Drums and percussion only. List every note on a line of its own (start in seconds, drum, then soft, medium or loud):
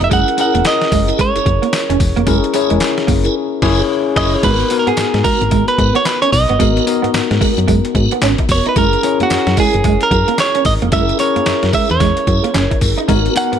0.01 closed hi-hat soft
0.11 kick loud
0.11 closed hi-hat medium
0.11 tambourine medium
0.28 closed hi-hat soft
0.38 closed hi-hat medium
0.38 tambourine medium
0.55 closed hi-hat medium
0.65 snare loud
0.65 clap medium
0.65 closed hi-hat medium
0.65 tambourine medium
0.81 snare medium
0.81 closed hi-hat soft
0.92 kick loud
0.92 open hi-hat medium
0.92 tambourine medium
1.09 closed hi-hat soft
1.19 kick medium
1.19 closed hi-hat medium
1.19 tambourine medium
1.36 closed hi-hat medium
1.46 kick loud
1.46 closed hi-hat medium
1.63 closed hi-hat medium
1.73 snare loud
1.73 clap medium
1.73 closed hi-hat medium
1.73 tambourine medium
1.90 closed hi-hat medium
2.00 kick loud
2.00 open hi-hat medium
2.00 tambourine medium
2.17 closed hi-hat soft
2.27 kick loud
2.27 closed hi-hat medium
2.27 tambourine medium
2.44 closed hi-hat soft
2.54 closed hi-hat medium
2.54 tambourine medium
2.70 closed hi-hat medium
2.80 snare loud
2.80 clap medium
2.80 closed hi-hat medium
2.80 tambourine medium
2.98 snare medium
2.98 closed hi-hat soft
3.08 kick loud
3.08 open hi-hat medium
3.08 tambourine medium
3.25 closed hi-hat soft
3.62 kick loud
3.62 snare loud
3.62 crash medium
4.16 kick loud
4.16 snare loud
4.16 crash medium
4.43 kick loud
4.43 closed hi-hat medium
4.43 crash loud
4.43 tambourine medium
4.60 closed hi-hat soft
4.70 closed hi-hat medium
4.70 tambourine medium
4.87 closed hi-hat medium
4.97 snare loud
4.97 clap medium
4.97 closed hi-hat medium
4.97 tambourine medium
5.14 snare medium
5.14 closed hi-hat medium
5.24 kick loud
5.24 open hi-hat medium
5.24 tambourine medium
5.41 closed hi-hat soft
5.51 kick loud
5.51 closed hi-hat medium
5.51 tambourine medium
5.68 closed hi-hat medium
5.78 kick loud
5.78 closed hi-hat medium
5.95 closed hi-hat medium
6.05 snare loud
6.05 clap loud
6.05 closed hi-hat medium
6.05 tambourine loud
6.22 closed hi-hat medium
6.33 kick loud
6.33 open hi-hat medium
6.33 tambourine medium
6.49 closed hi-hat soft
6.60 kick loud
6.60 closed hi-hat medium
6.60 tambourine medium
6.77 closed hi-hat soft
6.87 closed hi-hat medium
6.87 tambourine medium
7.04 closed hi-hat soft
7.14 snare loud
7.14 clap medium
7.14 closed hi-hat medium
7.14 tambourine loud
7.31 snare medium
7.31 closed hi-hat medium
7.41 kick loud
7.41 open hi-hat medium
7.41 tambourine medium
7.58 closed hi-hat soft
7.68 kick medium
7.68 closed hi-hat medium
7.68 tambourine medium
7.85 closed hi-hat medium
7.95 kick medium
7.95 closed hi-hat medium
8.11 closed hi-hat medium
8.22 snare loud
8.22 clap loud
8.22 closed hi-hat medium
8.22 tambourine medium
8.38 kick loud
8.38 closed hi-hat medium
8.49 kick loud
8.49 open hi-hat medium
8.49 tambourine medium
8.66 closed hi-hat soft
8.76 kick loud
8.76 closed hi-hat medium
8.76 tambourine medium
8.93 closed hi-hat soft
9.03 closed hi-hat medium
9.03 tambourine medium
9.20 closed hi-hat medium
9.30 snare loud
9.30 clap medium
9.30 closed hi-hat medium
9.30 tambourine medium
9.47 snare medium
9.47 closed hi-hat medium
9.57 kick loud
9.57 open hi-hat medium
9.57 tambourine medium
9.74 closed hi-hat soft
9.84 kick medium
9.84 closed hi-hat medium
9.84 tambourine medium
10.01 closed hi-hat medium
10.11 kick loud
10.11 closed hi-hat medium
10.28 closed hi-hat medium
10.38 snare loud
10.38 clap medium
10.38 closed hi-hat medium
10.38 tambourine loud
10.55 closed hi-hat medium
10.65 kick loud
10.65 open hi-hat medium
10.65 tambourine medium
10.82 closed hi-hat soft
10.92 kick loud
10.92 closed hi-hat medium
10.92 tambourine medium
11.09 closed hi-hat soft
11.19 closed hi-hat medium
11.19 tambourine medium
11.36 closed hi-hat soft
11.46 snare loud
11.46 clap medium
11.46 closed hi-hat medium
11.46 tambourine medium
11.63 snare medium
11.63 closed hi-hat medium
11.73 kick loud
11.73 open hi-hat medium
11.73 tambourine medium
11.90 closed hi-hat soft
12.00 kick medium
12.00 snare medium
12.00 closed hi-hat medium
12.00 tambourine medium
12.17 closed hi-hat medium
12.27 kick loud
12.27 closed hi-hat medium
12.44 closed hi-hat medium
12.54 snare loud
12.54 clap medium
12.54 closed hi-hat medium
12.54 tambourine loud
12.71 kick loud
12.71 closed hi-hat medium
12.81 kick loud
12.81 open hi-hat medium
12.81 tambourine medium
12.98 closed hi-hat soft
13.09 kick loud
13.09 closed hi-hat medium
13.09 tambourine medium
13.26 closed hi-hat soft
13.36 closed hi-hat medium
13.36 tambourine medium
13.53 closed hi-hat medium